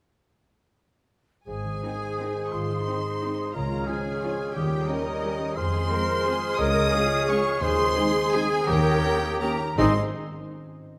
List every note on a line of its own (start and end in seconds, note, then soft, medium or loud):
1.47 1.76 G#1 soft
1.47 2.51 G#2 soft
1.47 3.51 G#3 soft
1.47 2.54 G#4 medium
1.47 3.51 C5 soft
1.47 2.42 G#5 medium
1.47 2.49 G#5 medium
1.47 3.51 D#6 soft
1.64 2.68 D#3 soft
1.82 1.96 D#3 soft
1.82 2.86 C4 soft
1.82 1.91 C4 soft
1.82 1.96 C4 soft
1.82 1.91 D#4 soft
1.82 2.49 G#4 soft
2.01 2.35 G#4 soft
2.18 2.31 D#3 soft
2.18 2.26 C4 soft
2.18 2.31 C4 soft
2.18 2.26 D#4 soft
2.18 3.21 D#5 soft
2.36 3.03 G#4 soft
2.45 2.52 C#6 medium
2.52 2.81 G#1 medium
2.52 3.56 G#2 soft
2.52 2.86 F4 soft
2.52 3.55 C5 medium
2.52 3.55 C6 medium
2.69 3.56 D#3 soft
2.87 3.00 D#3 soft
2.87 2.99 C4 soft
2.87 3.56 C4 soft
2.87 2.95 C4 soft
2.87 3.55 D#4 soft
2.87 2.95 D#4 soft
3.04 3.38 G#4 soft
3.21 3.34 D#3 soft
3.21 3.34 C4 soft
3.21 3.30 C4 soft
3.21 3.30 D#4 soft
3.21 3.56 D#5 soft
3.39 4.56 G#4 soft
3.54 3.82 C#2 medium
3.54 4.56 C#3 soft
3.54 4.56 G#3 soft
3.54 3.88 F4 soft
3.54 3.89 A#4 medium
3.54 5.53 C#5 medium
3.54 3.87 A#5 medium
3.54 3.88 A#5 medium
3.54 4.55 F6 soft
3.71 4.56 G#3 soft
3.87 4.00 F3 soft
3.87 4.00 C#4 soft
3.87 4.87 C#4 soft
3.87 3.96 C#4 soft
3.87 3.96 F4 soft
3.87 4.54 G#4 medium
3.87 4.23 G#4 medium
3.87 4.55 G#5 medium
3.87 4.54 G#5 medium
4.06 4.38 F4 soft
4.22 4.34 F3 soft
4.22 4.35 C#4 soft
4.22 4.31 C#4 soft
4.22 4.55 F4 medium
4.22 4.31 F4 soft
4.22 5.58 C#5 soft
4.39 4.56 F4 soft
4.55 4.83 D#2 medium
4.55 5.58 D#3 medium
4.55 5.56 G3 medium
4.55 4.87 G4 medium
4.55 4.88 G4 medium
4.55 4.88 G5 medium
4.55 5.57 D#6 soft
4.71 5.58 A#3 soft
4.88 5.01 G3 soft
4.88 4.96 C#4 medium
4.88 5.01 C#4 soft
4.88 5.58 C#4 soft
4.88 5.58 D#4 medium
4.88 4.96 G4 soft
4.88 5.57 A#4 medium
4.88 5.57 D#5 medium
5.06 5.39 G4 soft
5.22 5.35 G3 soft
5.22 5.31 C#4 soft
5.22 5.35 C#4 medium
5.22 5.30 G4 medium
5.22 5.58 A#4 medium
5.40 5.58 G4 soft
5.56 5.85 F2 medium
5.56 7.63 F3 medium
5.56 7.58 G#3 medium
5.56 5.90 G#4 medium
5.56 6.58 C5 medium
5.56 6.60 C5 medium
5.56 6.57 C6 medium
5.56 6.57 C6 loud
5.56 7.62 F6 medium
5.73 6.60 C4 medium
5.90 6.04 G#3 medium
5.90 5.98 C4 medium
5.90 6.04 C4 medium
5.90 7.10 F4 soft
5.90 5.98 G#4 medium
5.90 6.26 A#4 medium
6.09 6.42 G#4 soft
6.25 6.38 G#3 medium
6.25 6.34 C4 medium
6.25 6.38 C4 medium
6.25 6.59 G#4 medium
6.25 6.34 G#4 medium
6.25 6.60 C5 medium
6.43 7.27 G#4 medium
6.58 6.87 C#2 medium
6.58 7.63 C#3 medium
6.58 6.93 A#4 medium
6.58 7.61 C#5 medium
6.58 7.30 D#5 loud
6.58 7.28 D#6 loud
6.75 8.69 G#3 medium
6.93 7.06 G#3 medium
6.93 7.63 C#4 medium
6.93 7.01 C#4 medium
6.93 7.06 F4 medium
6.93 7.60 G#4 medium
6.93 7.01 G#4 medium
7.11 7.44 F4 medium
7.28 7.40 G#3 medium
7.28 7.36 C#4 medium
7.28 7.41 F4 medium
7.28 8.14 G#4 medium
7.28 7.36 G#4 medium
7.28 7.63 C#5 medium
7.28 7.61 C#6 medium
7.28 7.62 C#6 loud
7.45 7.63 F4 medium
7.61 7.90 D#2 medium
7.61 8.66 D#3 medium
7.61 8.38 G#3 medium
7.61 8.65 G#4 medium
7.61 8.08 C5 loud
7.61 8.39 C5 medium
7.61 8.32 C6 loud
7.61 9.56 D#6 medium
7.78 8.69 C4 medium
7.96 8.10 G#3 medium
7.96 8.05 C4 medium
7.96 9.21 D#4 medium
7.96 8.10 D#4 medium
7.96 8.05 G#4 medium
8.15 8.50 G#4 medium
8.33 8.46 G#3 medium
8.33 8.42 C4 medium
8.33 8.46 D#4 medium
8.33 8.65 G#4 medium
8.33 8.42 G#4 medium
8.33 8.69 C5 medium
8.33 8.67 G#5 loud
8.51 8.69 G#4 medium
8.66 8.96 D#2 medium
8.66 9.80 D#3 medium
8.66 9.56 A#3 medium
8.66 9.39 G4 loud
8.66 9.41 A#4 medium
8.66 9.56 C#5 medium
8.66 9.41 G5 loud
9.02 9.17 A#3 medium
9.02 9.16 C#4 medium
9.02 9.11 C#4 medium
9.02 9.11 A#4 medium
9.22 9.59 D#4 medium
9.41 9.55 A#3 medium
9.41 9.55 C#4 medium
9.41 9.49 C#4 medium
9.41 9.60 G4 medium
9.41 9.78 A#4 medium
9.41 9.49 A#4 medium
9.41 9.78 A#5 medium
9.60 9.77 D#4 medium
9.75 9.98 G#1 medium
9.75 9.98 G#2 medium
9.75 9.98 G#3 medium
9.75 9.93 G#3 medium
9.75 9.98 C4 medium
9.75 9.93 C4 medium
9.75 9.92 D#4 medium
9.75 9.98 D#4 medium
9.75 9.98 G#4 medium
9.75 9.98 C5 medium
9.75 9.93 D#5 medium
9.75 9.98 C6 loud
9.75 9.98 D#6 medium
9.79 9.98 D#4 medium
9.79 9.98 C5 medium
9.79 9.98 D#5 medium